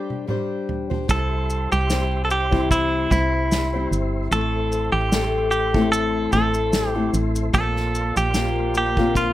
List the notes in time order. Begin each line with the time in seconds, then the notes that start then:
Already playing: G3 D4 G4 C5
0.10 high tom
0.27 G3 D4 G4 C5, mid tom
0.69 floor tom
0.90 D4 G4 C5, floor tom
1.08 C2 G3 C4 E4 G4 A4 C5 E5 C6, kick, shaker
1.50 shaker
1.72 C2 G4, shaker
1.89 G3 C4 E4 C5, snare, shaker
2.25 A4
2.30 G4, shaker
2.51 C3 E3 G3 C4 E4 C5, kick
2.71 E4, kick, shaker
3.10 C2 G3 C4 E4 C5, kick, shaker
3.52 snare, shaker
3.74 G3 C4 E4 C5
3.92 G1, shaker
4.31 A1 A3 C4 E4 A4, shaker
4.72 shaker
4.92 A1 G4
5.11 A3 C4 E4 A4, snare, shaker
5.51 G4, shaker
5.74 A2 E3 A3 C4 E4 A4, kick
5.92 A4, shaker
6.32 A1 A3 C4 E4 A4, kick, shaker
6.54 shaker
6.73 snare, shaker
6.89 G4
6.95 A3 C4 E4 A4
7.14 A1, shaker
7.36 shaker
7.53 A#1 A#3 C4 F4 A4 D5 F5, kick, shaker
7.76 snare
7.95 shaker
8.17 A#1 G4, shaker
8.34 A#3 C4 F4 A#4, snare, shaker
8.74 G4, shaker
8.97 A#2 D3 A#3 C4 F4 A#4, kick
9.15 F4, kick, shaker